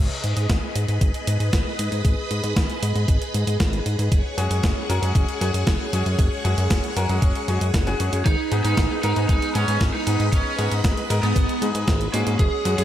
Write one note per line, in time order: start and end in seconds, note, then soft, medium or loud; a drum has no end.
0.00 12.35 G#4 medium
0.00 4.08 B4 medium
0.00 4.08 D#5 medium
0.00 4.08 B5 loud
0.24 0.34 G#2 medium
0.24 closed hi-hat medium
0.37 0.47 G#2 medium
0.37 closed hi-hat medium
0.49 0.60 G#1 medium
0.49 kick loud
0.49 snare loud
0.49 closed hi-hat medium
0.76 0.86 G#2 medium
0.76 closed hi-hat medium
0.88 0.99 G#2 medium
0.88 closed hi-hat medium
1.01 1.12 G#1 medium
1.01 kick loud
1.01 closed hi-hat medium
1.14 closed hi-hat soft
1.27 1.38 G#2 loud
1.27 closed hi-hat medium
1.40 1.50 G#2 medium
1.40 closed hi-hat medium
1.53 1.63 G#1 medium
1.53 kick loud
1.53 snare loud
1.53 closed hi-hat medium
1.79 1.89 G#2 medium
1.79 closed hi-hat medium
1.92 2.02 G#2 medium
1.92 closed hi-hat medium
2.05 2.15 G#1 loud
2.05 kick loud
2.05 closed hi-hat medium
2.31 2.41 G#2 medium
2.31 closed hi-hat medium
2.44 2.54 G#2 loud
2.44 closed hi-hat soft
2.56 2.67 G#1 medium
2.56 kick loud
2.56 snare loud
2.56 closed hi-hat medium
2.70 closed hi-hat soft
2.83 2.93 G#2 medium
2.83 closed hi-hat medium
2.95 3.06 G#2 medium
2.95 closed hi-hat soft
3.08 3.19 G#1 medium
3.08 kick loud
3.08 closed hi-hat medium
3.22 closed hi-hat soft
3.34 3.45 G#2 medium
3.34 closed hi-hat medium
3.47 3.57 G#2 medium
3.47 closed hi-hat medium
3.60 3.81 G#1 loud
3.60 kick loud
3.60 snare loud
3.60 closed hi-hat medium
3.73 closed hi-hat soft
3.86 3.96 G#2 medium
3.86 closed hi-hat medium
3.99 4.09 G#2 medium
3.99 closed hi-hat medium
4.12 4.22 F#1 loud
4.12 8.22 C#5 medium
4.12 8.22 F#5 medium
4.12 8.22 C#6 medium
4.12 kick loud
4.12 closed hi-hat medium
4.38 4.48 F#2 medium
4.38 4.86 G#3 medium
4.38 4.86 C#4 medium
4.38 4.86 F#4 medium
4.38 4.86 G#4 loud
4.38 closed hi-hat medium
4.51 4.61 F#2 loud
4.51 closed hi-hat medium
4.63 4.74 F#1 medium
4.63 kick loud
4.63 snare loud
4.63 closed hi-hat medium
4.89 5.00 F#2 medium
4.89 5.00 G#3 medium
4.89 5.00 C#4 medium
4.89 5.00 F#4 medium
4.89 5.00 A#4 loud
4.89 closed hi-hat medium
5.02 5.13 F#2 medium
5.02 5.38 G#3 medium
5.02 5.38 C#4 medium
5.02 5.38 F#4 medium
5.02 5.38 G#4 loud
5.02 closed hi-hat soft
5.15 5.26 F#1 medium
5.15 kick loud
5.15 closed hi-hat medium
5.29 closed hi-hat soft
5.41 5.51 F#2 loud
5.41 5.90 G#3 medium
5.41 5.90 C#4 medium
5.41 5.90 F#4 medium
5.41 5.90 G#4 loud
5.41 closed hi-hat medium
5.54 5.64 F#2 medium
5.54 closed hi-hat medium
5.67 5.77 F#1 loud
5.67 kick loud
5.67 snare loud
5.67 closed hi-hat medium
5.93 6.03 F#2 medium
5.93 6.42 G#3 medium
5.93 6.42 C#4 medium
5.93 6.42 F#4 medium
5.93 6.42 G#4 medium
5.93 closed hi-hat medium
6.06 6.16 F#2 medium
6.06 closed hi-hat soft
6.19 6.29 F#1 loud
6.19 kick loud
6.19 closed hi-hat medium
6.45 6.55 F#2 medium
6.45 6.93 G#3 medium
6.45 6.93 C#4 medium
6.45 6.93 F#4 medium
6.45 6.93 G#4 loud
6.45 closed hi-hat medium
6.58 6.68 F#2 loud
6.58 closed hi-hat soft
6.70 6.81 F#1 medium
6.70 kick loud
6.70 snare loud
6.70 closed hi-hat medium
6.84 closed hi-hat soft
6.96 7.07 F#2 medium
6.96 7.07 G#3 medium
6.96 7.07 C#4 medium
6.96 7.07 F#4 medium
6.96 7.07 A#4 loud
6.96 closed hi-hat medium
7.09 7.20 F#2 medium
7.09 7.45 G#3 medium
7.09 7.45 C#4 medium
7.09 7.45 F#4 medium
7.09 7.45 G#4 loud
7.09 closed hi-hat soft
7.22 7.32 F#1 medium
7.22 kick loud
7.22 closed hi-hat medium
7.35 closed hi-hat soft
7.48 7.58 F#2 medium
7.48 7.64 G#3 medium
7.48 7.64 C#4 medium
7.48 7.64 F#4 medium
7.48 7.64 G#4 medium
7.48 closed hi-hat medium
7.61 7.71 F#2 medium
7.61 closed hi-hat soft
7.74 7.94 F#1 loud
7.74 kick loud
7.74 snare loud
7.74 closed hi-hat medium
7.87 7.97 G#3 medium
7.87 7.97 C#4 medium
7.87 7.97 F#4 medium
7.87 7.97 G#4 loud
7.87 closed hi-hat soft
8.00 8.10 F#2 medium
8.00 8.24 G#3 medium
8.00 8.24 C#4 medium
8.00 8.24 F#4 medium
8.00 8.24 G#4 medium
8.00 closed hi-hat medium
8.13 8.23 F#2 medium
8.13 closed hi-hat soft
8.25 8.36 G#1 loud
8.25 8.55 D#4 medium
8.25 12.35 B4 medium
8.25 12.35 D#5 medium
8.25 12.35 B5 medium
8.25 kick loud
8.25 closed hi-hat medium
8.52 8.62 G#2 medium
8.52 9.00 G#3 medium
8.52 9.00 B3 medium
8.52 9.00 D#4 medium
8.52 9.00 G#4 loud
8.52 closed hi-hat medium
8.64 8.75 G#2 loud
8.64 8.94 D#4 medium
8.64 closed hi-hat soft
8.77 8.88 G#1 medium
8.77 kick loud
8.77 snare loud
8.77 closed hi-hat medium
9.03 9.14 G#2 medium
9.03 9.14 G#3 medium
9.03 9.14 B3 medium
9.03 9.23 D#4 medium
9.03 9.14 D#4 medium
9.03 9.14 A#4 loud
9.03 closed hi-hat medium
9.16 9.27 G#2 medium
9.16 9.52 G#3 medium
9.16 9.52 B3 medium
9.16 9.52 D#4 medium
9.16 9.52 G#4 medium
9.16 closed hi-hat soft
9.29 9.39 G#1 medium
9.29 9.49 D#4 medium
9.29 kick loud
9.29 closed hi-hat medium
9.42 closed hi-hat soft
9.55 9.65 G#2 loud
9.55 10.04 G#3 medium
9.55 10.04 B3 medium
9.55 9.84 C#4 medium
9.55 10.04 D#4 medium
9.55 10.04 G#4 loud
9.55 closed hi-hat medium
9.68 9.78 G#2 medium
9.68 closed hi-hat soft
9.81 9.91 G#1 loud
9.81 kick loud
9.81 snare loud
9.81 closed hi-hat medium
9.94 10.23 D#4 medium
10.06 10.17 G#2 medium
10.06 10.55 G#3 medium
10.06 10.55 B3 medium
10.06 10.55 D#4 medium
10.06 10.55 G#4 medium
10.06 closed hi-hat medium
10.20 10.30 G#2 medium
10.20 closed hi-hat medium
10.32 10.43 G#1 loud
10.32 10.72 C#4 medium
10.32 kick loud
10.32 closed hi-hat medium
10.58 10.69 G#2 medium
10.58 11.07 G#3 medium
10.58 11.07 B3 medium
10.58 11.07 D#4 medium
10.58 11.07 G#4 loud
10.58 closed hi-hat medium
10.71 10.82 G#2 loud
10.71 closed hi-hat medium
10.84 10.94 G#1 medium
10.84 kick loud
10.84 snare loud
10.84 closed hi-hat medium
10.97 closed hi-hat soft
11.10 11.20 G#2 medium
11.10 11.21 G#3 medium
11.10 11.21 B3 medium
11.10 11.21 D#4 medium
11.10 11.21 A#4 loud
11.10 closed hi-hat medium
11.23 11.33 G#2 loud
11.23 11.59 G#3 medium
11.23 11.59 B3 medium
11.23 11.62 B3 medium
11.23 11.59 D#4 medium
11.23 11.59 G#4 medium
11.23 closed hi-hat soft
11.36 11.46 G#1 medium
11.36 kick loud
11.36 closed hi-hat medium
11.49 closed hi-hat soft
11.62 11.72 G#2 medium
11.62 12.10 G#3 medium
11.62 12.10 B3 medium
11.62 12.10 D#4 medium
11.62 12.10 G#4 loud
11.62 closed hi-hat medium
11.75 11.85 G#2 medium
11.75 closed hi-hat medium
11.88 12.08 G#1 loud
11.88 kick loud
11.88 snare loud
11.88 closed hi-hat medium
12.01 closed hi-hat soft
12.13 12.24 G#2 medium
12.13 12.62 G#3 medium
12.13 12.33 A#3 medium
12.13 12.62 C#4 medium
12.13 12.62 F#4 medium
12.13 12.62 G#4 medium
12.13 closed hi-hat medium
12.27 12.37 G#2 medium
12.27 closed hi-hat medium
12.39 12.50 F#1 loud
12.39 12.84 G#4 medium
12.39 12.68 G#4 loud
12.39 12.84 C#5 medium
12.39 12.84 F#5 medium
12.39 12.84 C#6 medium
12.39 kick loud
12.39 closed hi-hat medium
12.65 12.76 F#2 loud
12.65 12.84 G#3 medium
12.65 12.84 C#4 medium
12.65 12.84 F#4 medium
12.65 12.84 G#4 medium
12.65 closed hi-hat medium
12.78 12.84 F#2 loud
12.78 12.84 G#4 medium
12.78 closed hi-hat medium